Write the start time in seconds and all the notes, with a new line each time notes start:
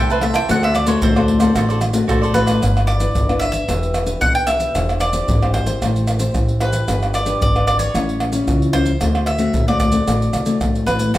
Already playing: C2 C3 G3 A3 E4
0.10 B4 C5 E5 A5, pandeiro, maracas
0.21 G3 A3 E4 G4 C5 E5 A5, pandeiro, tamborim
0.33 C5 E5 G5 A5, pandeiro, tamborim, maracas
0.48 D2 D3 A3 C4 F#4 A4 C5 D5 F#5, pandeiro, maracas, surdo
0.63 A4 C5 D5 E5, pandeiro, tamborim, maracas
0.74 D5, muted cavaquinho stroke, pandeiro, tamborim, maracas
0.86 A3 C4 F#4 A4 C5 C#5 D5, pandeiro, maracas
1.01 D2 A2 F#4 A4 C5 D5, pandeiro, maracas, surdo
1.15 A3 C4 F#4 A4 C5 D5, pandeiro, tamborim, maracas
1.28 pandeiro
1.39 A3 C4 F#4 A4 C5 D5, pandeiro, tamborim, maracas
1.55 A1 D3 A3 C4 F#4 A4 C5 D5, pandeiro, tamborim, maracas, surdo
1.69 A4 C5 D5, pandeiro, maracas
1.80 muted cavaquinho stroke, pandeiro, tamborim, maracas
1.93 A3 C4 F#4, pandeiro, maracas
2.08 B1 A2 F#4 A4 C5 D5, pandeiro, tamborim, maracas, surdo
2.22 A4 C5 D5, pandeiro, maracas
2.33 A1 A3 C4 F#4 A4 B4 C5 D5, pandeiro, tamborim, maracas
2.46 A4 C5 D5, pandeiro, tamborim, maracas
2.61 G1 G3 D4 E4 B4, pandeiro, tamborim, maracas, surdo
2.77 pandeiro, tamborim, maracas
2.87 D5, pandeiro, tamborim
3.00 D4 E4 B4, pandeiro, maracas
3.15 G1 D3, pandeiro, maracas, surdo
3.29 D4 E4 B4, pandeiro, tamborim, maracas
3.39 E5, pandeiro, tamborim, maracas
3.52 E5, pandeiro, maracas
3.68 E1 E3 D4 G4 B4, pandeiro, tamborim, maracas, surdo
3.83 pandeiro, maracas
3.94 pandeiro, tamborim, maracas
4.06 D4 G4 B4, pandeiro, maracas
4.21 B1 B2 F#5, pandeiro, tamborim, maracas, surdo
4.35 G5, pandeiro, maracas
4.47 D4 G4 B4 E5, pandeiro, tamborim, maracas
4.60 pandeiro, maracas
4.75 E1 E3 D4 G4 C5, pandeiro, tamborim, maracas, surdo
4.89 pandeiro, tamborim, maracas
5.00 D5, pandeiro, tamborim, maracas
5.13 D4 G4 C5, pandeiro, maracas
5.28 G#1 E3, pandeiro, maracas, surdo
5.42 D4 G4 C5, pandeiro, tamborim, maracas
5.54 C5, pandeiro, tamborim, surdo
5.66 E4 G4 C5, pandeiro, maracas
5.82 A1 A3, pandeiro, tamborim, maracas, surdo
5.96 pandeiro, maracas
6.07 pandeiro, tamborim, maracas
6.20 E4 G4 C5, pandeiro, maracas
6.34 A1 E3, pandeiro, tamborim, maracas, surdo
6.49 pandeiro, maracas
6.60 E4 G4 B4 C5, pandeiro, tamborim
6.73 pandeiro, maracas
6.88 G1 G3 D4 G4 B4, pandeiro, tamborim, maracas, surdo
7.03 pandeiro, tamborim, maracas
7.14 D5, pandeiro, tamborim, maracas
7.26 D4 G4 B4, pandeiro, maracas
7.41 G#1 D3 D5, pandeiro, maracas, surdo
7.55 D4 G4 B4, pandeiro, tamborim, maracas
7.67 D5, pandeiro, tamborim, maracas
7.79 C#5, pandeiro, maracas
7.94 A1 A2 G3 C#4 E4, pandeiro, tamborim, maracas, surdo
8.09 pandeiro, maracas
8.20 pandeiro, tamborim
8.32 G3 C#4 E4, pandeiro, maracas
8.47 C#2 E3, pandeiro, tamborim, maracas, surdo
8.62 pandeiro, maracas
8.73 G3 C#4 E4 C5, pandeiro, tamborim
8.86 pandeiro, maracas
9.01 D2 D3 A3 C4 F#4, pandeiro, tamborim, maracas, surdo
9.15 pandeiro, tamborim, maracas
9.26 E5, pandeiro, tamborim
9.38 A3 C4 F#4, pandeiro, maracas
9.54 D2 A2, pandeiro, maracas, surdo
9.68 A3 C4 F#4 D5, pandeiro, tamborim, maracas
9.80 D5, pandeiro, tamborim, maracas, surdo
9.92 A3 C4 F#4, pandeiro, maracas
10.07 A1 D3 A3 C4 F#4, pandeiro, tamborim, maracas, surdo
10.22 pandeiro, maracas
10.33 C2, pandeiro, tamborim, maracas
10.46 A3 C4 F#4, pandeiro, maracas
10.61 B1 A2, pandeiro, tamborim, maracas, surdo
10.76 pandeiro, maracas
10.87 A1 A3 C4 F#4 B4, pandeiro, tamborim, maracas
10.99 pandeiro, maracas
11.14 G1 G2 F#3 F#4 G4 C5, pandeiro, tamborim, maracas, surdo